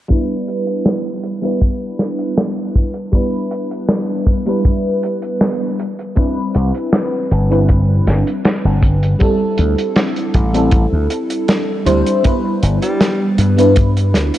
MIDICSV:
0, 0, Header, 1, 5, 480
1, 0, Start_track
1, 0, Key_signature, 1, "major"
1, 0, Tempo, 759494
1, 60, Time_signature, 4, 2, 24, 8
1, 9089, End_track
2, 0, Start_track
2, 0, Title_t, "FM electric piano"
2, 0, Program_c, 0, 5
2, 52, Note_on_c, 0, 55, 81
2, 57, Note_on_c, 0, 59, 75
2, 60, Note_on_c, 0, 62, 74
2, 66, Note_on_c, 0, 64, 74
2, 70, Note_on_c, 0, 71, 90
2, 173, Control_c, 0, 64, 127
2, 872, Note_off_c, 0, 55, 0
2, 874, Note_off_c, 0, 59, 0
2, 876, Note_off_c, 0, 62, 0
2, 879, Note_off_c, 0, 64, 0
2, 881, Note_off_c, 0, 71, 0
2, 896, Note_on_c, 0, 55, 74
2, 900, Note_on_c, 0, 59, 68
2, 905, Note_on_c, 0, 62, 71
2, 910, Note_on_c, 0, 64, 69
2, 915, Note_on_c, 0, 71, 78
2, 1948, Note_off_c, 0, 55, 0
2, 1950, Note_off_c, 0, 59, 0
2, 1952, Note_off_c, 0, 62, 0
2, 1955, Note_off_c, 0, 64, 0
2, 1957, Note_off_c, 0, 71, 0
2, 1971, Note_on_c, 0, 55, 84
2, 1976, Note_on_c, 0, 59, 75
2, 1981, Note_on_c, 0, 62, 76
2, 1985, Note_on_c, 0, 64, 76
2, 1989, Note_on_c, 0, 71, 87
2, 2791, Note_off_c, 0, 55, 0
2, 2794, Note_off_c, 0, 59, 0
2, 2796, Note_off_c, 0, 62, 0
2, 2798, Note_off_c, 0, 64, 0
2, 2800, Note_off_c, 0, 71, 0
2, 2818, Note_on_c, 0, 55, 76
2, 2822, Note_on_c, 0, 59, 69
2, 2827, Note_on_c, 0, 62, 66
2, 2831, Note_on_c, 0, 64, 68
2, 2836, Note_on_c, 0, 71, 83
2, 3642, Note_off_c, 0, 55, 0
2, 3644, Note_off_c, 0, 59, 0
2, 3647, Note_off_c, 0, 62, 0
2, 3649, Note_off_c, 0, 64, 0
2, 3651, Note_off_c, 0, 71, 0
2, 3667, Control_c, 0, 64, 0
2, 3773, Control_c, 0, 64, 127
2, 3890, Note_on_c, 0, 55, 83
2, 3895, Note_on_c, 0, 60, 78
2, 3900, Note_on_c, 0, 62, 76
2, 3904, Note_on_c, 0, 64, 75
2, 3910, Note_on_c, 0, 71, 90
2, 4711, Note_off_c, 0, 55, 0
2, 4713, Note_off_c, 0, 60, 0
2, 4716, Note_off_c, 0, 62, 0
2, 4718, Note_off_c, 0, 64, 0
2, 4720, Note_off_c, 0, 71, 0
2, 4737, Note_on_c, 0, 55, 77
2, 4742, Note_on_c, 0, 60, 67
2, 4746, Note_on_c, 0, 62, 72
2, 4751, Note_on_c, 0, 64, 70
2, 4756, Note_on_c, 0, 71, 83
2, 5788, Note_off_c, 0, 55, 0
2, 5791, Note_off_c, 0, 60, 0
2, 5793, Note_off_c, 0, 62, 0
2, 5795, Note_off_c, 0, 64, 0
2, 5798, Note_off_c, 0, 71, 0
2, 5808, Note_on_c, 0, 55, 85
2, 5813, Note_on_c, 0, 60, 76
2, 5818, Note_on_c, 0, 62, 78
2, 5824, Note_on_c, 0, 64, 78
2, 5828, Control_c, 0, 64, 0
2, 5828, Note_on_c, 0, 69, 95
2, 5928, Control_c, 0, 64, 127
2, 6630, Note_off_c, 0, 55, 0
2, 6632, Note_off_c, 0, 60, 0
2, 6635, Note_off_c, 0, 62, 0
2, 6638, Note_off_c, 0, 64, 0
2, 6639, Note_off_c, 0, 69, 0
2, 6656, Note_on_c, 0, 55, 75
2, 6660, Note_on_c, 0, 60, 71
2, 6665, Note_on_c, 0, 62, 72
2, 6671, Note_on_c, 0, 64, 69
2, 6675, Note_on_c, 0, 69, 89
2, 7472, Note_off_c, 0, 55, 0
2, 7474, Note_off_c, 0, 60, 0
2, 7477, Note_off_c, 0, 62, 0
2, 7480, Note_off_c, 0, 64, 0
2, 7482, Note_off_c, 0, 69, 0
2, 7493, Note_on_c, 0, 55, 92
2, 7494, Note_on_c, 0, 60, 88
2, 7496, Note_on_c, 0, 62, 86
2, 7498, Note_on_c, 0, 64, 88
2, 7500, Note_on_c, 0, 72, 105
2, 7709, Note_off_c, 0, 55, 0
2, 7710, Note_off_c, 0, 60, 0
2, 7711, Note_off_c, 0, 62, 0
2, 7712, Note_off_c, 0, 64, 0
2, 7713, Note_off_c, 0, 72, 0
2, 7730, Note_on_c, 0, 55, 82
2, 7735, Note_on_c, 0, 59, 75
2, 7740, Note_on_c, 0, 62, 76
2, 7744, Note_on_c, 0, 64, 76
2, 7747, Control_c, 0, 64, 0
2, 7750, Note_on_c, 0, 71, 95
2, 7846, Control_c, 0, 64, 127
2, 8550, Note_off_c, 0, 55, 0
2, 8553, Note_off_c, 0, 59, 0
2, 8556, Note_off_c, 0, 62, 0
2, 8557, Note_off_c, 0, 64, 0
2, 8560, Note_off_c, 0, 71, 0
2, 8574, Note_on_c, 0, 55, 74
2, 8577, Note_on_c, 0, 59, 72
2, 8581, Note_on_c, 0, 62, 72
2, 8586, Note_on_c, 0, 64, 70
2, 8591, Note_on_c, 0, 71, 85
2, 9089, Note_off_c, 0, 55, 0
2, 9089, Note_off_c, 0, 59, 0
2, 9089, Note_off_c, 0, 62, 0
2, 9089, Note_off_c, 0, 64, 0
2, 9089, Note_off_c, 0, 71, 0
2, 9089, End_track
3, 0, Start_track
3, 0, Title_t, "Tenor saxophone"
3, 0, Program_c, 1, 66
3, 8106, Note_on_c, 1, 55, 96
3, 8391, Note_off_c, 1, 55, 0
3, 9089, End_track
4, 0, Start_track
4, 0, Title_t, "Slap bass"
4, 0, Program_c, 2, 36
4, 4141, Note_on_c, 2, 36, 93
4, 4237, Note_off_c, 2, 36, 0
4, 4621, Note_on_c, 2, 31, 90
4, 5058, Note_off_c, 2, 31, 0
4, 5100, Note_on_c, 2, 31, 84
4, 5196, Note_off_c, 2, 31, 0
4, 5465, Note_on_c, 2, 31, 98
4, 5777, Note_off_c, 2, 31, 0
4, 6060, Note_on_c, 2, 38, 92
4, 6156, Note_off_c, 2, 38, 0
4, 6538, Note_on_c, 2, 33, 92
4, 6858, Note_off_c, 2, 33, 0
4, 6904, Note_on_c, 2, 38, 91
4, 6992, Note_off_c, 2, 38, 0
4, 7498, Note_on_c, 2, 38, 79
4, 7595, Note_off_c, 2, 38, 0
4, 7981, Note_on_c, 2, 31, 95
4, 8077, Note_off_c, 2, 31, 0
4, 8459, Note_on_c, 2, 43, 88
4, 8941, Note_off_c, 2, 43, 0
4, 8941, Note_on_c, 2, 38, 83
4, 9037, Note_off_c, 2, 38, 0
4, 9089, End_track
5, 0, Start_track
5, 0, Title_t, "Drums"
5, 56, Note_on_c, 9, 42, 85
5, 67, Note_on_c, 9, 36, 105
5, 120, Note_off_c, 9, 42, 0
5, 130, Note_off_c, 9, 36, 0
5, 303, Note_on_c, 9, 42, 76
5, 366, Note_off_c, 9, 42, 0
5, 422, Note_on_c, 9, 42, 61
5, 486, Note_off_c, 9, 42, 0
5, 541, Note_on_c, 9, 38, 112
5, 541, Note_on_c, 9, 42, 81
5, 604, Note_off_c, 9, 38, 0
5, 604, Note_off_c, 9, 42, 0
5, 779, Note_on_c, 9, 42, 81
5, 842, Note_off_c, 9, 42, 0
5, 904, Note_on_c, 9, 42, 66
5, 967, Note_off_c, 9, 42, 0
5, 1019, Note_on_c, 9, 42, 91
5, 1022, Note_on_c, 9, 36, 103
5, 1082, Note_off_c, 9, 42, 0
5, 1085, Note_off_c, 9, 36, 0
5, 1259, Note_on_c, 9, 38, 56
5, 1263, Note_on_c, 9, 42, 87
5, 1322, Note_off_c, 9, 38, 0
5, 1326, Note_off_c, 9, 42, 0
5, 1383, Note_on_c, 9, 42, 67
5, 1446, Note_off_c, 9, 42, 0
5, 1499, Note_on_c, 9, 42, 89
5, 1501, Note_on_c, 9, 38, 103
5, 1562, Note_off_c, 9, 42, 0
5, 1564, Note_off_c, 9, 38, 0
5, 1741, Note_on_c, 9, 42, 91
5, 1742, Note_on_c, 9, 36, 89
5, 1804, Note_off_c, 9, 42, 0
5, 1805, Note_off_c, 9, 36, 0
5, 1857, Note_on_c, 9, 42, 63
5, 1920, Note_off_c, 9, 42, 0
5, 1976, Note_on_c, 9, 42, 75
5, 1978, Note_on_c, 9, 36, 115
5, 2039, Note_off_c, 9, 42, 0
5, 2041, Note_off_c, 9, 36, 0
5, 2219, Note_on_c, 9, 42, 86
5, 2282, Note_off_c, 9, 42, 0
5, 2346, Note_on_c, 9, 42, 67
5, 2409, Note_off_c, 9, 42, 0
5, 2456, Note_on_c, 9, 38, 122
5, 2461, Note_on_c, 9, 42, 84
5, 2519, Note_off_c, 9, 38, 0
5, 2524, Note_off_c, 9, 42, 0
5, 2697, Note_on_c, 9, 36, 99
5, 2699, Note_on_c, 9, 42, 91
5, 2760, Note_off_c, 9, 36, 0
5, 2762, Note_off_c, 9, 42, 0
5, 2820, Note_on_c, 9, 42, 61
5, 2883, Note_off_c, 9, 42, 0
5, 2939, Note_on_c, 9, 36, 123
5, 2941, Note_on_c, 9, 42, 80
5, 3002, Note_off_c, 9, 36, 0
5, 3004, Note_off_c, 9, 42, 0
5, 3179, Note_on_c, 9, 42, 85
5, 3243, Note_off_c, 9, 42, 0
5, 3300, Note_on_c, 9, 42, 66
5, 3363, Note_off_c, 9, 42, 0
5, 3418, Note_on_c, 9, 42, 86
5, 3419, Note_on_c, 9, 38, 124
5, 3481, Note_off_c, 9, 42, 0
5, 3482, Note_off_c, 9, 38, 0
5, 3662, Note_on_c, 9, 42, 87
5, 3725, Note_off_c, 9, 42, 0
5, 3785, Note_on_c, 9, 42, 65
5, 3848, Note_off_c, 9, 42, 0
5, 3894, Note_on_c, 9, 42, 80
5, 3900, Note_on_c, 9, 36, 109
5, 3958, Note_off_c, 9, 42, 0
5, 3963, Note_off_c, 9, 36, 0
5, 4137, Note_on_c, 9, 42, 93
5, 4200, Note_off_c, 9, 42, 0
5, 4262, Note_on_c, 9, 42, 63
5, 4326, Note_off_c, 9, 42, 0
5, 4378, Note_on_c, 9, 38, 127
5, 4378, Note_on_c, 9, 42, 91
5, 4441, Note_off_c, 9, 38, 0
5, 4442, Note_off_c, 9, 42, 0
5, 4622, Note_on_c, 9, 42, 77
5, 4685, Note_off_c, 9, 42, 0
5, 4751, Note_on_c, 9, 42, 67
5, 4814, Note_off_c, 9, 42, 0
5, 4858, Note_on_c, 9, 42, 88
5, 4865, Note_on_c, 9, 36, 117
5, 4922, Note_off_c, 9, 42, 0
5, 4928, Note_off_c, 9, 36, 0
5, 5101, Note_on_c, 9, 42, 79
5, 5103, Note_on_c, 9, 38, 57
5, 5165, Note_off_c, 9, 42, 0
5, 5166, Note_off_c, 9, 38, 0
5, 5227, Note_on_c, 9, 42, 69
5, 5290, Note_off_c, 9, 42, 0
5, 5338, Note_on_c, 9, 42, 85
5, 5342, Note_on_c, 9, 38, 125
5, 5401, Note_off_c, 9, 42, 0
5, 5405, Note_off_c, 9, 38, 0
5, 5578, Note_on_c, 9, 36, 99
5, 5582, Note_on_c, 9, 42, 87
5, 5641, Note_off_c, 9, 36, 0
5, 5645, Note_off_c, 9, 42, 0
5, 5706, Note_on_c, 9, 42, 67
5, 5769, Note_off_c, 9, 42, 0
5, 5815, Note_on_c, 9, 42, 77
5, 5822, Note_on_c, 9, 36, 126
5, 5878, Note_off_c, 9, 42, 0
5, 5886, Note_off_c, 9, 36, 0
5, 6053, Note_on_c, 9, 42, 83
5, 6116, Note_off_c, 9, 42, 0
5, 6183, Note_on_c, 9, 42, 65
5, 6246, Note_off_c, 9, 42, 0
5, 6293, Note_on_c, 9, 42, 80
5, 6297, Note_on_c, 9, 38, 127
5, 6356, Note_off_c, 9, 42, 0
5, 6360, Note_off_c, 9, 38, 0
5, 6422, Note_on_c, 9, 42, 50
5, 6485, Note_off_c, 9, 42, 0
5, 6535, Note_on_c, 9, 42, 82
5, 6538, Note_on_c, 9, 36, 106
5, 6598, Note_off_c, 9, 42, 0
5, 6601, Note_off_c, 9, 36, 0
5, 6663, Note_on_c, 9, 42, 67
5, 6727, Note_off_c, 9, 42, 0
5, 6771, Note_on_c, 9, 42, 80
5, 6777, Note_on_c, 9, 36, 116
5, 6834, Note_off_c, 9, 42, 0
5, 6840, Note_off_c, 9, 36, 0
5, 7016, Note_on_c, 9, 42, 73
5, 7079, Note_off_c, 9, 42, 0
5, 7142, Note_on_c, 9, 42, 63
5, 7205, Note_off_c, 9, 42, 0
5, 7256, Note_on_c, 9, 42, 79
5, 7260, Note_on_c, 9, 38, 110
5, 7320, Note_off_c, 9, 42, 0
5, 7323, Note_off_c, 9, 38, 0
5, 7498, Note_on_c, 9, 42, 80
5, 7562, Note_off_c, 9, 42, 0
5, 7625, Note_on_c, 9, 42, 66
5, 7688, Note_off_c, 9, 42, 0
5, 7738, Note_on_c, 9, 42, 95
5, 7743, Note_on_c, 9, 36, 105
5, 7801, Note_off_c, 9, 42, 0
5, 7807, Note_off_c, 9, 36, 0
5, 7980, Note_on_c, 9, 42, 84
5, 8043, Note_off_c, 9, 42, 0
5, 8105, Note_on_c, 9, 42, 71
5, 8168, Note_off_c, 9, 42, 0
5, 8220, Note_on_c, 9, 38, 122
5, 8223, Note_on_c, 9, 42, 82
5, 8284, Note_off_c, 9, 38, 0
5, 8286, Note_off_c, 9, 42, 0
5, 8457, Note_on_c, 9, 42, 89
5, 8521, Note_off_c, 9, 42, 0
5, 8585, Note_on_c, 9, 42, 68
5, 8649, Note_off_c, 9, 42, 0
5, 8696, Note_on_c, 9, 42, 96
5, 8704, Note_on_c, 9, 36, 125
5, 8759, Note_off_c, 9, 42, 0
5, 8767, Note_off_c, 9, 36, 0
5, 8828, Note_on_c, 9, 42, 59
5, 8891, Note_off_c, 9, 42, 0
5, 8938, Note_on_c, 9, 38, 58
5, 8942, Note_on_c, 9, 42, 85
5, 9001, Note_off_c, 9, 38, 0
5, 9005, Note_off_c, 9, 42, 0
5, 9063, Note_on_c, 9, 42, 63
5, 9089, Note_off_c, 9, 42, 0
5, 9089, End_track
0, 0, End_of_file